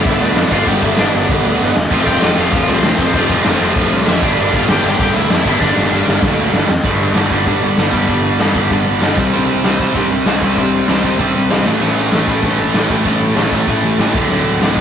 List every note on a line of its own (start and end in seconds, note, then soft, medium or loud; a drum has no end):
0.00 0.49 G2 loud
0.00 0.50 G2 medium
0.00 0.50 D3 loud
0.00 0.51 D3 loud
0.00 0.50 G3 loud
0.00 0.51 G3 medium
0.00 0.51 B3 loud
0.00 0.52 B3 medium
0.00 0.52 D4 medium
0.00 0.52 D4 loud
0.00 0.19 E4 medium
0.00 0.52 G4 loud
0.00 0.52 G4 medium
0.04 0.15 G1 medium
0.04 0.21 E5 loud
0.04 kick loud
0.04 crash loud
0.20 0.31 D2 loud
0.20 0.49 D4 medium
0.20 0.49 D5 loud
0.20 crash medium
0.35 0.46 F2 medium
0.35 snare loud
0.35 crash medium
0.51 0.61 G1 loud
0.51 0.97 G2 medium
0.51 0.97 D3 loud
0.51 0.98 G3 loud
0.51 0.98 B3 loud
0.51 0.98 D4 medium
0.51 0.67 F4 medium
0.51 0.98 G4 loud
0.51 0.68 F5 medium
0.51 kick loud
0.51 crash medium
0.67 0.76 G1 loud
0.67 0.82 G4 medium
0.67 0.82 G5 medium
0.67 kick loud
0.67 crash medium
0.82 0.92 G1 medium
0.82 0.97 E4 medium
0.82 0.99 E5 medium
0.82 kick medium
0.82 crash medium
0.97 1.08 G1 loud
0.97 1.74 G2 medium
0.97 1.75 D3 medium
0.97 1.75 G3 medium
0.97 1.75 B3 medium
0.97 1.27 D4 medium
0.97 1.75 D4 loud
0.97 1.76 G4 loud
0.97 1.27 D5 medium
0.97 snare loud
0.97 crash medium
1.13 1.24 G1 medium
1.13 crash medium
1.29 1.38 G1 loud
1.29 kick loud
1.29 crash loud
1.45 1.54 D2 loud
1.45 crash medium
1.61 1.70 G1 medium
1.61 snare medium
1.76 1.85 E1 medium
1.76 snare loud
1.90 2.00 F1 loud
1.90 2.35 F2 loud
1.90 2.36 C3 loud
1.90 2.36 F3 medium
1.90 2.36 A3 loud
1.90 2.36 C4 medium
1.90 2.35 F4 loud
1.90 kick loud
1.90 crash loud
2.06 2.16 F1 medium
2.06 2.35 G4 medium
2.06 2.38 G5 loud
2.06 kick medium
2.06 crash medium
2.22 2.31 F1 loud
2.22 snare loud
2.22 crash loud
2.36 2.47 F1 loud
2.36 3.13 F2 medium
2.36 3.14 C3 medium
2.36 3.14 F3 medium
2.36 3.13 A3 medium
2.36 3.13 C4 medium
2.36 3.13 F4 medium
2.36 2.66 F4 medium
2.36 2.69 F5 loud
2.36 crash medium
2.52 2.62 F1 loud
2.52 kick loud
2.52 crash loud
2.68 2.78 C2 loud
2.68 2.97 C4 medium
2.68 2.98 C5 medium
2.68 crash medium
2.83 2.92 D2 loud
2.83 snare loud
2.83 crash medium
2.98 3.08 F1 loud
2.98 3.72 C4 medium
2.98 3.72 C5 medium
2.98 kick loud
2.98 crash medium
3.14 3.23 F1 loud
3.14 3.59 F2 medium
3.14 3.60 C3 loud
3.14 3.60 F3 loud
3.14 3.60 A3 loud
3.14 3.59 C4 loud
3.14 3.58 F4 loud
3.14 kick loud
3.14 crash medium
3.29 3.39 F1 medium
3.29 kick medium
3.29 crash medium
3.44 3.55 F1 loud
3.44 snare loud
3.44 crash medium
3.60 3.70 F1 loud
3.60 4.20 F2 medium
3.60 4.21 C3 medium
3.60 4.22 F3 medium
3.60 4.22 A3 medium
3.60 4.21 C4 medium
3.60 4.21 F4 medium
3.60 crash medium
3.75 3.85 F1 loud
3.75 kick loud
3.75 crash medium
3.91 4.01 C2 loud
3.91 crash medium
4.07 4.17 F1 medium
4.07 4.22 E4 medium
4.07 4.21 E5 medium
4.07 snare loud
4.07 crash medium
4.21 4.31 G1 loud
4.21 4.67 G2 medium
4.21 4.66 D3 medium
4.21 4.68 G3 loud
4.21 4.69 A#3 loud
4.21 4.69 D4 loud
4.21 4.70 G4 loud
4.21 4.54 D5 loud
4.21 kick loud
4.21 crash medium
4.25 4.52 D4 medium
4.37 4.47 G1 loud
4.37 crash medium
4.52 4.62 G1 loud
4.52 4.68 F4 medium
4.52 4.68 F5 medium
4.52 kick loud
4.52 crash medium
4.67 4.78 G1 loud
4.67 5.44 G2 medium
4.67 5.44 D3 medium
4.67 5.45 G3 medium
4.67 5.46 A#3 medium
4.67 5.47 D4 medium
4.67 5.47 G4 loud
4.67 4.97 G5 loud
4.67 snare loud
4.67 crash loud
4.71 4.99 G4 medium
4.84 4.93 G1 loud
4.84 crash medium
4.98 5.09 G1 loud
4.98 5.15 G4 medium
4.98 5.14 G5 loud
4.98 kick loud
4.98 crash loud
5.14 5.25 D2 loud
5.14 5.59 E4 medium
5.14 5.62 E5 loud
5.14 crash medium
5.30 5.40 F2 medium
5.30 snare loud
5.30 crash loud
5.44 5.55 G1 medium
5.44 5.90 G2 loud
5.44 5.91 D3 loud
5.44 5.91 G3 loud
5.44 5.91 A#3 medium
5.44 5.92 D4 loud
5.44 5.92 G4 loud
5.44 kick loud
5.44 crash medium
5.60 5.71 G1 loud
5.60 6.19 D4 medium
5.60 6.18 D5 medium
5.60 kick loud
5.60 snare medium
5.77 5.86 G1 loud
5.77 snare medium
5.91 6.01 G1 loud
5.91 6.68 G2 medium
5.91 6.69 D3 medium
5.91 6.69 G3 medium
5.91 6.69 A#3 medium
5.91 6.69 D4 medium
5.91 6.70 G4 medium
6.07 6.16 G1 medium
6.07 snare medium
6.22 6.32 G1 loud
6.22 kick loud
6.22 snare loud
6.38 6.47 D2 loud
6.53 6.62 G1 medium
6.53 snare loud
6.69 6.78 F2 medium
6.69 snare loud
6.83 7.12 G1 medium
6.83 7.13 G2 loud
6.83 7.14 D3 loud
6.83 7.15 G3 loud
6.83 kick loud
6.83 crash loud
7.14 7.30 G1 medium
7.14 7.30 G2 medium
7.14 7.30 D3 medium
7.14 7.30 G3 medium
7.14 snare loud
7.14 open hi-hat medium
7.30 7.45 G1 medium
7.30 7.44 G2 medium
7.30 7.45 D3 medium
7.30 7.46 G3 medium
7.30 kick medium
7.45 7.60 G1 medium
7.45 7.76 G2 medium
7.45 7.76 D3 medium
7.45 7.78 G3 medium
7.45 kick medium
7.45 open hi-hat medium
7.62 7.76 G1 medium
7.77 7.92 G1 medium
7.77 7.93 G2 medium
7.77 7.92 D3 loud
7.77 7.92 G3 loud
7.77 snare loud
7.77 open hi-hat medium
7.92 8.07 G1 medium
7.92 8.07 G2 medium
7.92 8.08 D3 medium
7.92 8.09 G3 medium
7.92 kick medium
8.08 8.37 G1 medium
8.08 8.38 G2 loud
8.08 8.39 D3 loud
8.08 8.40 G3 loud
8.08 kick medium
8.08 open hi-hat medium
8.39 8.54 G1 loud
8.39 8.55 G2 medium
8.39 8.54 D3 medium
8.39 8.54 G3 medium
8.39 snare loud
8.39 open hi-hat medium
8.55 8.69 G1 medium
8.55 8.69 G2 medium
8.55 8.70 D3 medium
8.55 8.71 G3 medium
8.55 kick medium
8.70 8.85 G1 loud
8.70 9.01 G2 loud
8.70 9.01 D3 loud
8.70 9.03 G3 medium
8.70 kick loud
8.70 open hi-hat medium
8.87 9.01 G1 loud
9.02 9.16 G1 medium
9.02 9.17 G2 medium
9.02 9.17 D3 medium
9.02 9.18 G3 medium
9.02 snare loud
9.02 open hi-hat medium
9.17 9.31 C2 medium
9.17 9.35 C3 medium
9.17 9.34 G3 medium
9.17 9.33 C4 loud
9.17 kick loud
9.33 9.62 C2 loud
9.33 9.64 C3 medium
9.33 9.64 G3 medium
9.33 9.64 C4 loud
9.33 open hi-hat medium
9.64 9.79 C2 medium
9.64 9.79 C3 medium
9.64 9.79 G3 medium
9.64 9.81 C4 medium
9.64 snare loud
9.64 open hi-hat medium
9.79 9.94 C2 medium
9.79 9.94 C3 medium
9.79 9.94 G3 medium
9.79 9.94 C4 medium
9.79 kick medium
9.94 10.09 C2 medium
9.94 10.26 C3 medium
9.94 10.25 G3 medium
9.94 10.25 C4 loud
9.94 kick loud
9.94 open hi-hat medium
10.12 10.25 C2 medium
10.26 10.41 C2 medium
10.26 10.40 C3 medium
10.26 10.41 G3 medium
10.26 10.42 C4 medium
10.26 snare loud
10.26 open hi-hat medium
10.41 10.56 C2 medium
10.41 10.56 C3 medium
10.41 10.55 G3 medium
10.41 10.55 C4 medium
10.41 kick medium
10.56 10.85 C2 medium
10.56 10.87 C3 medium
10.56 10.87 G3 loud
10.56 10.87 C4 loud
10.56 kick medium
10.56 open hi-hat medium
10.87 11.03 C2 medium
10.87 11.02 C3 medium
10.87 11.02 G3 medium
10.87 11.04 C4 medium
10.87 snare loud
10.87 open hi-hat medium
11.03 11.18 C2 medium
11.03 11.19 C3 medium
11.03 11.19 G3 medium
11.03 11.19 C4 medium
11.03 kick medium
11.19 11.33 C2 medium
11.19 11.50 C3 medium
11.19 11.49 G3 medium
11.19 11.49 C4 loud
11.19 kick loud
11.19 open hi-hat medium
11.36 11.49 C2 medium
11.50 11.65 C2 medium
11.50 11.65 C3 medium
11.50 11.65 G3 medium
11.50 11.67 C4 loud
11.50 snare loud
11.50 open hi-hat medium
11.66 11.81 A1 medium
11.66 11.82 A2 medium
11.66 11.81 E3 medium
11.66 11.81 A3 medium
11.66 snare medium
11.81 12.10 A1 medium
11.81 12.12 A2 medium
11.81 12.12 E3 medium
11.81 12.11 A3 loud
11.81 crash medium
12.12 12.27 A1 medium
12.12 12.26 A2 medium
12.12 12.27 E3 medium
12.12 12.28 A3 medium
12.12 snare loud
12.12 open hi-hat medium
12.27 12.42 A1 medium
12.27 12.43 A2 medium
12.27 12.42 E3 medium
12.27 12.42 A3 medium
12.27 kick medium
12.43 12.57 A1 medium
12.43 12.73 A2 medium
12.43 12.73 E3 medium
12.43 12.73 A3 loud
12.43 kick loud
12.43 open hi-hat medium
12.59 12.73 A1 medium
12.74 12.89 A1 medium
12.74 12.88 A2 medium
12.74 12.89 E3 medium
12.74 12.90 A3 loud
12.74 snare loud
12.74 open hi-hat medium
12.89 13.04 A1 medium
12.89 13.05 A2 medium
12.89 13.05 E3 medium
12.89 13.05 A3 medium
12.89 kick medium
13.05 13.33 A1 medium
13.05 13.37 A2 medium
13.05 13.36 E3 medium
13.05 13.36 A3 loud
13.05 kick medium
13.05 open hi-hat medium
13.36 13.51 A1 loud
13.36 13.51 A2 medium
13.36 13.52 E3 loud
13.36 13.53 A3 medium
13.36 snare loud
13.36 open hi-hat medium
13.52 13.66 A1 medium
13.52 13.68 A2 medium
13.52 13.67 E3 medium
13.52 13.67 A3 medium
13.52 kick medium
13.68 13.82 A1 medium
13.68 13.99 A2 medium
13.68 13.99 E3 medium
13.68 13.99 A3 loud
13.68 kick loud
13.68 open hi-hat medium
13.84 13.98 A1 medium
13.99 14.13 A1 medium
13.99 14.14 A2 medium
13.99 14.14 E3 medium
13.99 14.15 A3 loud
13.99 snare loud
13.99 open hi-hat medium
14.14 14.28 D1 medium
14.14 14.31 D2 medium
14.14 14.30 A2 medium
14.14 14.30 D3 loud
14.14 kick loud
14.30 14.58 D1 medium
14.30 14.62 D2 medium
14.30 14.61 A2 medium
14.30 14.61 D3 loud
14.30 open hi-hat medium
14.61 14.75 D1 medium
14.61 14.75 D2 medium
14.61 14.76 A2 medium
14.61 14.77 D3 loud
14.61 snare loud
14.61 open hi-hat medium
14.76 14.81 D1 medium
14.76 14.81 D2 medium
14.76 14.81 A2 medium
14.76 14.81 D3 medium
14.76 kick medium